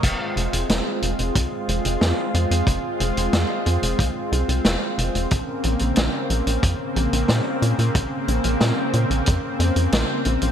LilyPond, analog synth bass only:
\new Staff \with { instrumentName = "Analog synth bass" } { \clef bass \time 4/4 \key f \minor \tempo 4 = 91 f,,16 r16 f,,16 f,,16 f,,16 r16 f,,16 f,,16 c,16 r16 f,,16 f,,16 f,16 r16 f,16 f,16 | f,,16 r16 f,,16 f,,16 f,16 r16 f,16 f,,16 c,16 r16 c,16 c,16 f,,16 r16 f,,16 f,,16 | bes,,16 r16 bes,,16 bes,,16 bes,,16 r16 bes,,16 bes,,16 f,16 r16 bes,,16 bes,,16 bes,16 r16 bes,16 bes,16 | bes,,16 r16 bes,,16 bes,,16 bes,16 r16 bes,16 bes,,16 f,16 r16 f,16 f,16 bes,,16 r16 bes,,16 bes,,16 | }